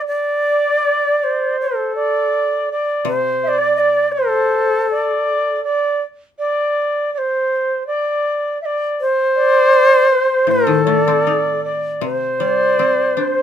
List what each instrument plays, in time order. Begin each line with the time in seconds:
0.08 shakuhachi D5
0.43 bansuri D5
1.19 bansuri D5
1.23 bansuri C5
1.61 shakuhachi A4
1.95 bansuri D5
2.71 bansuri D5
3.05 koto C3, shakuhachi C5
3.43 bansuri E5
3.48 bansuri D5
3.59 shakuhachi D5
3.76 shakuhachi D5 D#5
4.12 shakuhachi A4, bansuri D5
4.18 bansuri C5
4.91 bansuri D5
5.64 bansuri D5
6.38 bansuri D5
7.13 bansuri D5
7.18 bansuri C5
7.87 bansuri D5
8.61 bansuri D5 E5
9.01 shakuhachi C5
9.35 bansuri D5
10.10 bansuri B4
10.21 bansuri C5
10.47 koto A2, shakuhachi A4
10.67 koto D#3
10.84 koto A3, bansuri D5
11.08 koto C4
11.27 koto D#4
11.64 bansuri D5
12.01 koto C3, shakuhachi C5
12.39 koto G3, bansuri D5
12.79 koto C4
13.17 koto D4, bansuri C5